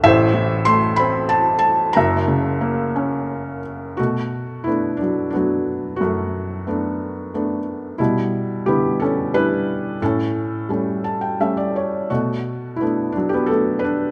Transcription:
0.03 A1 A2 C5 E5
0.34 E3
0.65 A3 C6
0.96 C4 B5
1.29 A5
1.59 A5
1.93 F#1 F#2 E5 A#5
2.28 C#3
2.61 A#3
2.96 C#4
3.97 B2 A3 F#4
4.64 A3 B3 D4 E4
4.97 D4
5.02 F#3
5.30 A3 B3 D4
5.34 F#3 D4
5.96 F#4
6.01 F#2 A3
6.67 A3 B3 D4
7.34 A3 B3 D4
7.98 B2 G3 E4
8.66 D3 G3 B3 E4 G4
9.00 C#4 A4
9.34 G3 D4 E4 B4
10.02 A2 C#4 A4
10.69 G3 A3 C#4
11.04 A5
11.21 G5
11.40 G3 A3 C#4 E5
11.57 D5
11.76 C#5
12.10 B2 A3 F#4
12.76 E4
12.80 A3 B3 D4
13.12 D4
13.17 F#3
13.29 G4
13.34 B3
13.46 A3 A4
13.51 B3 D4
13.79 B4
13.84 D4

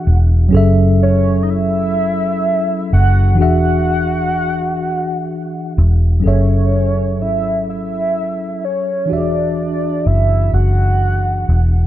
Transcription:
Already playing: E3 D4 F#4 G#4 E5 F#5
0.07 E1
0.49 F#3 C#4 G#4
0.54 F#1 A4 E5
1.03 C#5
1.43 D#5
1.50 E5
2.93 F#1 F#5
3.35 E3 D4 F#4
3.40 E1 G#4 E5 F#5
5.78 E1
6.20 F#3 C#4
6.24 F#1 G#4 A4 C#5 E5
7.21 G#1 E5
7.69 E5
8.64 F#1 C#5
9.06 E3 D4 F#4
9.11 E1 G4 D5 E5
9.18 G#4
10.06 F#1 E5
10.53 F#1 F#5
11.49 E1

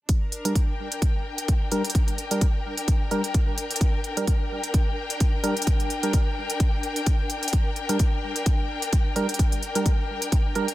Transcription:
0.09 D4, kick, closed hi-hat
0.15 A#4
0.32 closed hi-hat
0.45 G3 D4 A#4, closed hi-hat
0.55 G5, kick, closed hi-hat
0.92 closed hi-hat
1.02 kick, closed hi-hat
1.38 closed hi-hat
1.48 kick, closed hi-hat
1.72 G3 D4 A#4, closed hi-hat
1.85 closed hi-hat
1.90 closed hi-hat
1.95 kick, closed hi-hat
2.08 closed hi-hat
2.18 closed hi-hat
2.31 G3 D4 A#4, closed hi-hat
2.41 kick, closed hi-hat
2.77 closed hi-hat
2.88 kick, closed hi-hat
3.11 G3 D4 A#4, closed hi-hat
3.24 closed hi-hat
3.34 kick, closed hi-hat
3.58 closed hi-hat
3.71 closed hi-hat
3.76 closed hi-hat
3.81 kick, closed hi-hat
4.04 closed hi-hat
4.17 G3 D4 A#4, closed hi-hat
4.27 kick, closed hi-hat
4.64 closed hi-hat
4.74 kick, closed hi-hat
5.10 closed hi-hat
5.20 kick, closed hi-hat
5.44 G3 D4 A#4, closed hi-hat
5.57 closed hi-hat
5.62 closed hi-hat
5.67 kick, closed hi-hat
5.80 closed hi-hat
5.90 closed hi-hat
6.03 G3 D4 A#4, closed hi-hat
6.13 kick, closed hi-hat
6.50 closed hi-hat
6.60 kick, closed hi-hat
6.83 closed hi-hat
6.96 closed hi-hat
7.06 kick, closed hi-hat
7.30 closed hi-hat
7.43 closed hi-hat
7.48 closed hi-hat
7.53 kick, closed hi-hat
7.76 closed hi-hat
7.89 G3 D4 A#4, closed hi-hat
7.99 kick, closed hi-hat
8.36 closed hi-hat
8.46 kick, closed hi-hat
8.82 closed hi-hat
8.93 kick, closed hi-hat
9.16 G3 D4 A#4, closed hi-hat
9.29 closed hi-hat
9.34 closed hi-hat
9.39 kick, closed hi-hat
9.52 closed hi-hat
9.63 closed hi-hat
9.75 G3 D4 A#4, closed hi-hat
9.86 kick, closed hi-hat
10.22 closed hi-hat
10.32 kick, closed hi-hat
10.55 G3 D4 A#4, closed hi-hat
10.68 closed hi-hat

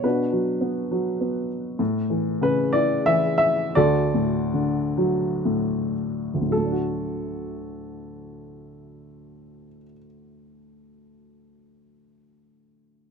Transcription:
0.03 B2 D4 F#4 B4
0.32 F#3
0.61 B3
0.91 F#3
1.21 B3
1.79 A2
2.10 E3
2.41 C#3 B4
2.73 E4 D5
3.06 E3 E5
3.38 E5
3.75 D2 F#4 A4 D5
4.14 A2
4.54 D3
4.98 F#3
5.45 A2
6.34 D2
6.41 A2
6.49 F#3 A4
6.57 A3
6.64 D4
6.72 F#4

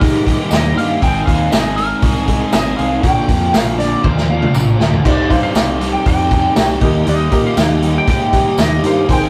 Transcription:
Already playing: G3 A#3 D#4 A#4
0.01 G#2 D#3 G3 A#3 D#4 G4, kick, open hi-hat
0.26 D#3 G3 A#3 D#4 G4, kick, open hi-hat
0.51 D#2 D#3 G3 A#3 D#4 G4 D#5, snare, open hi-hat, tambourine
0.76 G2 D#3 G3 A#3 D#4 G4 F5, open hi-hat
1.01 G#1 G#3 C4 D#4 G#4 A#4 G5, kick, open hi-hat
1.26 D#2 G#3 C4 D#4 G#4 F5, kick, open hi-hat
1.51 G#1 G#3 C4 D#4 G#4 D#5, snare, open hi-hat, tambourine
1.76 G#3 C4 D#4 G#4 A#4, open hi-hat
2.02 C2 G#3 C4 D#4 G#4, kick, open hi-hat
2.27 G#3 C4 D#4 G#4, kick, open hi-hat
2.52 G#1 G#3 C4 D#4 G#4 D#5, snare, open hi-hat, tambourine
2.77 C2 G#3 C4 D#4 G#4 F5, open hi-hat
3.02 A#1 A#2 D3 F3 A#3 D4 F4 A#4 D5 G5, kick, open hi-hat
3.27 F2 A#2 D3 F3 A#3 D4 A#4, kick, open hi-hat
3.53 A#1 A#2 D3 F3 A#3 D4 A#4 F5, snare, open hi-hat, tambourine
3.78 A#2 D3 F3 A#3 D4 A#4 D5, snare, open hi-hat
4.03 D#2 A#2 D3 F3 A#3 D4 A#4 C5, kick
4.17 snare
4.29 A#2 D3 F3 A#3 D4 A#4 F5
4.42 mid tom
4.54 A#1 A#2 D3 F3 A#3 D4 A#4, mid tom, tambourine
4.79 D2 A#2 D3 F3 A#3 D4 A#4, snare
4.93 floor tom
5.04 C2 C3 G3 C4 D#4 G4 C5 D5, kick, crash
5.29 G2 C3 G3 C4 D#4 G4 C5 F5, kick, open hi-hat
5.43 F5
5.55 C2 C3 G3 C4 D#4 G4, snare, open hi-hat, tambourine
5.80 C3 G3 C4 D#4 G4, snare, open hi-hat
5.93 G5
6.05 F2 C3 G3 C4 D#4 G4 G5, kick, open hi-hat
6.31 C3 G3 C4 D#4 G4, kick, open hi-hat
6.56 C2 C3 G3 C4 D#4 G4, snare, open hi-hat, tambourine
6.81 D#2 D#3 G3 A#3 D#4 G4 A#4 D#5, kick, open hi-hat
7.06 D#2 D#3 G3 A#3 D#4 G4 D#5, open hi-hat
7.31 A#2 D#3 G3 A#3 D#4 G4 A#4 D#5, kick, open hi-hat
7.47 F5
7.57 D#2 D#3 G3 A#3 D#4 G4, snare, open hi-hat, tambourine
7.82 D#3 G3 A#3 D#4 G4, open hi-hat
7.98 G5
8.07 G#2 D#3 G3 A#3 D#4 G4 G5, kick, open hi-hat
8.33 D#3 G3 A#3 D#4 G4, kick, open hi-hat
8.58 D#2 D#3 G3 A#3 D#4 G4, snare, open hi-hat, tambourine
8.62 D#5
8.83 G2 D#3 G3 A#3 D#4 G4 A#4 C5 F5, open hi-hat
9.07 G#1 G#2 D#3 G#3 A#3 C4 D#4 G#4 A#4 C5, kick, open hi-hat
9.13 G5

